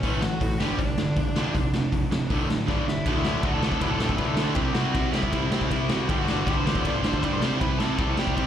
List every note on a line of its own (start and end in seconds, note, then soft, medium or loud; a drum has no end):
0.00 0.29 A1 loud
0.00 0.21 A2 loud
0.00 0.21 E3 loud
0.00 0.22 A3 loud
0.00 0.20 C#4 medium
0.00 0.23 C#5 loud
0.00 kick loud
0.00 open hi-hat medium
0.21 0.39 A2 medium
0.21 0.40 E3 medium
0.21 0.57 F#4 medium
0.21 0.60 F#5 medium
0.21 snare loud
0.40 0.58 A2 medium
0.40 0.54 A2 medium
0.40 0.59 E3 medium
0.40 kick loud
0.40 open hi-hat medium
0.59 0.72 G1 medium
0.59 0.78 G2 medium
0.59 0.78 D3 medium
0.59 0.79 G3 loud
0.59 0.78 G4 medium
0.59 0.80 G5 medium
0.59 snare loud
0.78 0.92 G1 loud
0.78 0.97 G2 medium
0.78 0.97 D3 medium
0.78 2.63 D4 medium
0.78 1.99 D5 medium
0.78 kick loud
0.78 open hi-hat medium
0.97 1.11 G1 medium
0.97 1.15 G2 medium
0.97 1.15 D3 medium
0.97 snare loud
1.16 1.30 E1 medium
1.16 1.35 G2 medium
1.16 1.35 D3 medium
1.16 kick loud
1.16 open hi-hat medium
1.35 1.48 F1 medium
1.35 1.54 F2 medium
1.35 1.54 C3 medium
1.35 1.54 F3 loud
1.35 snare loud
1.55 1.68 F1 loud
1.55 1.72 F2 medium
1.55 1.72 C3 medium
1.55 kick loud
1.55 open hi-hat medium
1.73 1.86 F1 medium
1.73 1.91 F2 medium
1.73 1.91 C3 medium
1.73 snare loud
1.92 2.05 F1 medium
1.92 2.09 F2 medium
1.92 2.10 C3 medium
1.92 kick loud
1.92 open hi-hat medium
1.99 2.64 C5 medium
2.10 2.23 F1 medium
2.10 2.29 F2 medium
2.10 2.29 C3 medium
2.10 snare loud
2.30 2.56 D1 loud
2.30 2.47 D2 medium
2.30 2.48 A2 medium
2.30 2.49 D3 medium
2.30 kick loud
2.30 open hi-hat medium
2.48 2.66 D2 medium
2.48 2.66 A2 medium
2.48 snare loud
2.66 2.81 G1 medium
2.66 2.84 G2 medium
2.66 2.84 D3 medium
2.66 2.85 G3 loud
2.66 2.86 D4 medium
2.66 2.88 D5 medium
2.66 kick loud
2.66 snare medium
2.85 2.99 G1 medium
2.85 3.03 G2 medium
2.85 3.03 D3 medium
2.85 3.05 E4 medium
2.85 3.08 E5 medium
2.85 snare medium
3.05 3.40 D1 loud
3.05 3.22 D2 loud
3.05 3.23 A2 loud
3.05 3.23 D3 loud
3.05 3.16 F#4 medium
3.05 3.16 F#5 medium
3.05 kick loud
3.05 ride medium
3.16 3.42 E4 medium
3.16 3.44 E5 loud
3.24 3.42 D2 medium
3.24 3.43 A2 medium
3.24 3.43 D3 medium
3.24 snare loud
3.43 3.60 D1 medium
3.43 3.61 D2 medium
3.43 3.61 A2 medium
3.43 3.62 D3 medium
3.43 3.52 F#4 medium
3.43 3.53 F#5 medium
3.43 kick loud
3.43 ride medium
3.53 3.79 A4 medium
3.53 3.80 A5 loud
3.61 3.79 C2 medium
3.61 3.80 D2 medium
3.61 3.80 A2 medium
3.61 3.81 D3 medium
3.61 snare loud
3.72 kick loud
3.81 3.97 D1 loud
3.81 3.98 D2 loud
3.81 3.98 A2 loud
3.81 3.99 D3 loud
3.81 3.86 B4 medium
3.81 3.90 B5 medium
3.81 kick loud
3.81 ride medium
3.89 4.16 A4 medium
3.89 4.17 A5 loud
3.98 4.16 D1 medium
3.98 4.17 D2 medium
3.98 4.17 A2 medium
3.98 4.18 D3 medium
3.98 snare loud
4.09 kick medium
4.17 4.36 D2 medium
4.17 4.35 D2 medium
4.17 4.36 A2 medium
4.17 4.36 D3 medium
4.17 4.27 B4 medium
4.17 4.27 B5 medium
4.17 kick loud
4.17 ride medium
4.26 4.54 A4 medium
4.26 4.57 A5 medium
4.36 4.54 D2 medium
4.36 4.55 D2 medium
4.36 4.55 A2 loud
4.36 4.55 D3 loud
4.36 snare loud
4.55 4.74 C2 loud
4.55 4.74 C3 loud
4.55 4.75 G3 loud
4.55 4.75 C4 loud
4.55 4.73 G4 medium
4.55 4.73 G5 medium
4.55 kick loud
4.55 ride medium
4.74 4.93 C2 loud
4.74 4.93 C3 medium
4.74 4.95 G3 medium
4.74 4.94 C4 medium
4.74 5.10 F#4 medium
4.74 5.12 F#5 medium
4.74 snare loud
4.95 5.12 C2 medium
4.95 5.12 C3 medium
4.95 5.14 G3 medium
4.95 5.13 C4 medium
4.95 kick loud
4.95 ride medium
5.12 5.30 C2 loud
5.12 5.31 C3 medium
5.12 5.33 G3 loud
5.12 5.32 C4 loud
5.12 5.49 E4 medium
5.12 5.48 E5 loud
5.12 snare loud
5.23 kick medium
5.32 5.49 C2 loud
5.32 5.50 C3 loud
5.32 5.51 G3 loud
5.32 5.51 C4 loud
5.32 kick loud
5.32 ride medium
5.50 5.68 C2 medium
5.50 5.70 C3 medium
5.50 5.71 G3 medium
5.50 5.71 C4 medium
5.50 snare loud
5.61 kick medium
5.71 6.05 C2 medium
5.71 5.89 C3 medium
5.71 5.91 G3 medium
5.71 5.91 C4 loud
5.71 5.89 E4 medium
5.71 5.89 E5 loud
5.71 kick loud
5.71 ride medium
5.89 6.08 C3 medium
5.89 6.09 G3 medium
5.89 6.08 C4 loud
5.89 6.07 F#4 medium
5.89 6.08 F#5 medium
5.89 snare loud
6.09 6.43 G1 loud
6.09 6.27 G2 loud
6.09 6.28 D3 loud
6.09 6.29 G3 loud
6.09 6.17 G4 medium
6.09 6.18 G5 medium
6.09 kick loud
6.09 ride medium
6.18 6.44 F#4 medium
6.18 6.46 F#5 medium
6.28 6.46 G2 medium
6.28 6.47 D3 loud
6.28 6.48 G3 medium
6.28 snare loud
6.46 6.64 G1 medium
6.46 6.66 G2 medium
6.46 6.66 D3 medium
6.46 6.68 G3 loud
6.46 6.56 G4 medium
6.46 6.56 G5 loud
6.46 kick loud
6.46 ride medium
6.57 6.83 C5 medium
6.57 6.83 C6 loud
6.66 6.83 E2 medium
6.66 6.84 G2 medium
6.66 6.85 D3 medium
6.66 6.85 G3 loud
6.66 snare loud
6.75 kick medium
6.85 7.02 G1 loud
6.85 7.03 G2 loud
6.85 7.04 D3 loud
6.85 7.04 G3 loud
6.85 6.95 D5 medium
6.85 6.94 D6 loud
6.85 kick loud
6.85 ride medium
6.94 7.21 C5 medium
6.94 7.23 C6 loud
7.04 7.21 G1 medium
7.04 7.22 G2 medium
7.04 7.22 D3 medium
7.04 7.23 G3 loud
7.04 snare loud
7.13 kick medium
7.23 7.40 G2 medium
7.23 7.41 G2 medium
7.23 7.41 D3 medium
7.23 7.41 G3 loud
7.23 7.32 D5 medium
7.23 7.31 D6 medium
7.23 kick loud
7.23 ride medium
7.31 7.59 C5 medium
7.31 7.60 C6 loud
7.42 7.59 C2 medium
7.42 7.59 C3 medium
7.42 7.60 G3 loud
7.42 7.60 C4 loud
7.42 snare loud
7.61 7.78 C2 loud
7.61 7.79 C3 loud
7.61 7.79 G3 loud
7.61 7.80 C4 loud
7.61 7.79 B4 medium
7.61 7.78 B5 loud
7.61 kick loud
7.61 ride medium
7.78 7.98 C2 loud
7.78 7.97 C3 medium
7.78 7.98 G3 medium
7.78 7.98 C4 medium
7.78 8.15 A4 medium
7.78 8.18 A5 loud
7.78 snare loud
7.98 8.16 C2 medium
7.98 8.16 C3 medium
7.98 8.17 G3 medium
7.98 8.17 C4 medium
7.98 kick loud
7.98 ride medium
8.17 8.36 C3 medium
8.17 8.35 C3 medium
8.17 8.36 G3 medium
8.17 8.36 C4 loud
8.17 8.47 G4 medium
8.17 8.47 G5 loud
8.17 snare loud
8.27 kick loud
8.37 8.47 C2 loud
8.37 8.47 C3 loud
8.37 8.47 G3 loud
8.37 8.47 C4 loud
8.37 kick medium
8.37 ride medium